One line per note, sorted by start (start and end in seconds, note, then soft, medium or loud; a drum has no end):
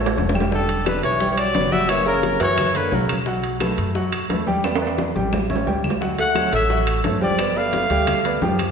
0.00 0.14 A1 medium
0.00 0.29 A3 medium
0.00 0.29 A4 medium
0.00 0.29 C#5 medium
0.00 high conga soft
0.06 low timbale loud
0.18 0.98 E1 medium
0.18 low bongo medium
0.18 high conga medium
0.18 low timbale medium
0.29 low bongo medium
0.29 low timbale medium
0.34 0.49 G3 medium
0.34 0.49 G4 medium
0.34 0.49 G5 medium
0.34 high conga medium
0.34 claves medium
0.40 low bongo medium
0.40 low timbale medium
0.51 0.84 D3 medium
0.51 0.80 G3 medium
0.51 0.80 G4 medium
0.51 0.85 A4 medium
0.51 0.80 G5 medium
0.51 high bongo medium
0.51 high conga soft
0.69 high bongo soft
0.69 high conga soft
0.69 high timbale medium
0.85 1.03 D3 medium
0.85 1.14 B3 medium
0.85 1.14 B4 medium
0.85 1.03 B4 medium
0.85 1.14 D5 medium
0.85 high bongo medium
0.85 high conga medium
0.85 high timbale medium
0.85 claves medium
1.03 1.52 B1 medium
1.03 1.29 E3 medium
1.03 1.29 C#5 medium
1.03 high conga soft
1.03 high timbale medium
1.20 1.48 G3 medium
1.20 1.49 G4 medium
1.20 1.49 G5 medium
1.20 high bongo medium
1.20 high conga soft
1.31 1.38 E3 medium
1.31 1.39 C#5 medium
1.37 1.73 F#3 medium
1.37 1.74 D5 loud
1.37 high conga soft
1.37 high timbale loud
1.37 claves medium
1.55 2.35 F#1 medium
1.55 1.69 B3 medium
1.55 1.69 B4 medium
1.55 1.69 D5 medium
1.55 high bongo soft
1.55 low bongo medium
1.55 high conga medium
1.55 high timbale medium
1.55 low timbale medium
1.71 1.86 F#3 medium
1.71 1.90 G3 medium
1.71 1.86 F#4 medium
1.71 1.91 E5 loud
1.71 1.86 F#5 medium
1.71 high bongo soft
1.71 high conga medium
1.89 2.05 E3 medium
1.89 2.03 A#3 medium
1.89 2.04 A#4 medium
1.89 2.07 C#5 loud
1.89 2.04 C#5 medium
1.89 high bongo medium
1.89 high conga soft
1.89 high timbale loud
1.89 claves medium
2.06 2.38 C#3 medium
2.06 2.34 A#3 medium
2.06 2.35 A#4 medium
2.06 2.39 A#4 medium
2.06 2.35 C#5 medium
2.06 high bongo soft
2.06 high conga soft
2.23 high bongo medium
2.23 high conga medium
2.23 high timbale medium
2.40 2.88 F#2 loud
2.40 2.77 E3 medium
2.40 2.69 F#3 medium
2.40 2.69 F#4 medium
2.40 2.78 C#5 loud
2.40 2.69 F#5 medium
2.40 high conga soft
2.40 high timbale medium
2.58 high bongo medium
2.58 high conga soft
2.58 low conga medium
2.58 high timbale loud
2.58 claves medium
2.75 2.94 D3 medium
2.75 2.89 A#3 medium
2.75 2.89 A#4 medium
2.75 2.96 B4 medium
2.75 2.89 C#5 medium
2.75 high conga soft
2.75 high timbale medium
2.92 3.72 B1 medium
2.92 3.18 C#3 medium
2.92 3.20 F#3 medium
2.92 3.20 F#4 medium
2.92 3.19 A#4 medium
2.92 3.20 F#5 medium
2.92 high bongo soft
2.92 low bongo medium
2.92 high conga medium
2.92 low timbale medium
3.09 high bongo soft
3.09 high conga medium
3.09 high timbale loud
3.09 claves medium
3.26 3.55 F#3 medium
3.26 3.55 F#4 medium
3.26 3.55 F#5 medium
3.26 high bongo medium
3.26 high conga soft
3.43 high bongo soft
3.43 high conga soft
3.43 high timbale medium
3.60 3.89 A3 medium
3.60 3.89 A4 medium
3.60 3.89 B4 medium
3.60 high bongo medium
3.60 high conga loud
3.60 high timbale medium
3.60 claves medium
3.78 4.26 F#2 loud
3.78 high conga soft
3.78 high timbale medium
3.95 4.23 F#3 medium
3.95 4.24 F#4 medium
3.95 4.24 F#5 medium
3.95 high bongo medium
3.95 high conga soft
4.12 high conga soft
4.12 high timbale loud
4.12 claves medium
4.29 5.10 E2 medium
4.29 4.44 A3 medium
4.29 4.44 A4 medium
4.29 4.44 B4 medium
4.29 high bongo soft
4.29 low bongo medium
4.29 high conga medium
4.29 high timbale medium
4.29 low timbale medium
4.47 4.61 G3 medium
4.47 4.61 G4 medium
4.47 4.61 G5 medium
4.47 high bongo soft
4.47 high conga medium
4.64 4.78 B3 medium
4.64 4.78 B4 medium
4.64 4.78 D5 medium
4.64 high bongo medium
4.64 high conga soft
4.64 high timbale medium
4.64 claves medium
4.75 high timbale medium
4.81 5.09 B3 medium
4.81 5.10 B4 medium
4.81 5.10 D5 medium
4.81 high bongo soft
4.81 high conga soft
4.87 high timbale medium
4.98 high bongo medium
4.98 high conga medium
4.98 high timbale medium
5.16 5.63 A1 medium
5.16 5.44 G3 medium
5.16 5.44 G4 medium
5.16 5.44 G5 medium
5.16 high conga loud
5.33 high bongo medium
5.33 high conga medium
5.33 low timbale medium
5.33 claves medium
5.50 5.64 C#4 medium
5.50 5.64 C#5 medium
5.50 5.64 E5 medium
5.50 low conga medium
5.56 low timbale medium
5.67 6.47 D2 medium
5.67 5.95 G3 medium
5.67 5.95 G4 medium
5.67 5.95 G5 medium
5.67 high bongo soft
5.67 low bongo medium
5.67 low timbale medium
5.84 high bongo soft
5.84 low conga medium
5.84 claves medium
5.90 low timbale medium
6.01 6.29 F#3 medium
6.01 6.29 F#4 medium
6.01 6.29 F#5 medium
6.01 high bongo medium
6.01 high conga soft
6.18 6.50 A3 medium
6.18 6.51 F#5 loud
6.18 high bongo soft
6.18 high conga soft
6.18 high timbale medium
6.35 6.63 A3 medium
6.35 6.63 A4 medium
6.35 6.63 C#5 medium
6.35 high bongo medium
6.35 high conga loud
6.35 high timbale medium
6.35 claves medium
6.53 7.01 A1 loud
6.53 7.01 A3 medium
6.53 7.02 E5 medium
6.53 high conga soft
6.53 high timbale medium
6.69 6.98 F#3 medium
6.69 6.98 F#4 medium
6.69 6.98 F#5 medium
6.69 high bongo medium
6.69 high conga soft
6.87 high conga soft
6.87 high timbale medium
6.87 claves medium
7.04 7.84 G1 medium
7.04 7.18 A3 medium
7.04 7.18 A4 medium
7.04 7.18 C#5 medium
7.04 high bongo soft
7.04 low bongo medium
7.04 high conga medium
7.04 high timbale medium
7.04 low timbale medium
7.21 7.57 F3 medium
7.21 7.35 G3 medium
7.21 7.35 G4 medium
7.21 7.58 D5 medium
7.21 7.36 G5 medium
7.21 high bongo soft
7.21 high conga medium
7.39 7.53 B3 medium
7.39 7.53 B4 medium
7.39 7.53 D5 medium
7.39 high bongo medium
7.39 high conga soft
7.39 high timbale medium
7.39 claves medium
7.56 8.59 A3 medium
7.56 7.84 B3 medium
7.56 7.84 B4 medium
7.56 7.84 D5 medium
7.56 8.59 F5 loud
7.56 high bongo soft
7.56 high conga soft
7.73 high bongo medium
7.73 high conga medium
7.73 high timbale medium
7.90 8.38 D2 medium
7.90 8.19 G3 medium
7.90 8.19 G4 medium
7.90 8.19 G5 medium
7.90 high conga soft
7.90 high timbale medium
8.07 high bongo medium
8.07 high conga soft
8.07 low conga medium
8.07 high timbale loud
8.07 claves medium
8.25 8.39 B3 medium
8.25 8.39 B4 medium
8.25 8.39 D5 medium
8.25 high conga soft
8.25 high timbale medium
8.41 8.71 F#2 loud
8.41 8.70 F3 medium
8.41 8.70 G4 medium
8.41 8.70 G5 medium
8.41 high bongo soft
8.41 low bongo medium
8.41 high conga medium
8.41 low timbale medium
8.59 high bongo soft
8.59 high conga medium
8.59 high timbale medium
8.59 claves medium